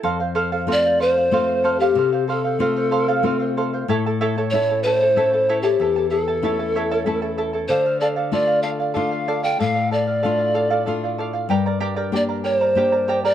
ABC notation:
X:1
M:3/4
L:1/16
Q:1/4=94
K:F
V:1 name="Charango"
[Acf] [cf] [Acf] [Acf] [Acf] [cf] [Acf] [cf] [Acf] [cf] [Acf] [Acf] | [Acf] [cf] [Acf] [cf] [Acf] [cf] [Acf] [Acf] [Acf] [cf] [Acf] [cf] | [EA^cea] [EAa] [EAcea] [EAcea] [EAea] [EAa] [EAea] [EAa] [EAcea] [EAa] [EAcea] [EAcea] | [EAea] [EAa] [EAea] [EAa] [EA^cea] [EAa] [EAcea] [EAcea] [EAea] [EAa] [EAea] [EAa] |
[Adf] [df] [Adf] [Adf] [Adf] [df] [Adf] [df] [Adf] [df] [Adf] [Adf] | [Adf] [df] [Adf] [df] [Adf] [df] [Adf] [Adf] [Adf] [df] [Adf] [df] | [GBdgb] [Bdb] [GBdgb] [GBdgb] [Bdgb] [Bdb] [Bdgb] [Bdb] [GBdgb] [Bdb] [GBdgb] [GBdgb] |]
V:2 name="Pan flute"
z4 d2 c4- c G- | G2 A8 z2 | z4 ^c2 =c4- c G- | G2 A8 z2 |
c2 d2 d2 f2 f3 g | f2 d6 z4 | z4 d2 c4- c d |]
V:3 name="Nylon-string guitar"
F,,4 [A,CF]4 [A,CF]4 | C,4 [A,CF]4 [A,CF]4 | A,,4 [A,^CE]4 [A,CE]4 | E,,4 [A,^CE]4 [A,CE]4 |
D,4 [A,DF]4 [A,DF]4 | A,,4 [A,DF]4 [A,DF]4 | G,,4 [B,DG]4 [B,DG]4 |]